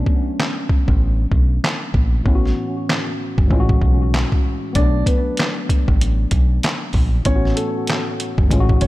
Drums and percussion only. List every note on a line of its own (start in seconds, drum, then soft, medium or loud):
0.06 kick medium
0.40 snare loud
0.40 clap loud
0.69 kick loud
0.88 kick medium
1.32 kick medium
1.64 snare loud
1.64 clap medium
1.94 kick medium
2.26 kick loud
2.45 snare soft
2.89 snare loud
2.89 clap medium
3.38 kick loud
3.51 kick medium
3.69 kick loud
3.82 kick medium
4.14 snare loud
4.14 clap medium
4.32 kick loud
4.75 kick loud
4.75 closed hi-hat medium
5.06 kick loud
5.06 closed hi-hat medium
5.37 snare loud
5.37 clap loud
5.37 closed hi-hat medium
5.69 kick loud
5.69 closed hi-hat medium
5.88 kick loud
6.01 closed hi-hat loud
6.31 kick medium
6.31 closed hi-hat medium
6.63 snare loud
6.63 clap medium
6.63 closed hi-hat medium
6.93 kick medium
6.93 open hi-hat medium
7.25 kick loud
7.25 closed hi-hat medium
7.45 snare soft
7.57 closed hi-hat medium
7.87 snare loud
7.87 clap loud
7.87 closed hi-hat medium
8.20 closed hi-hat medium
8.38 kick loud
8.51 kick medium
8.51 closed hi-hat loud
8.69 kick loud
8.81 kick medium
8.81 closed hi-hat medium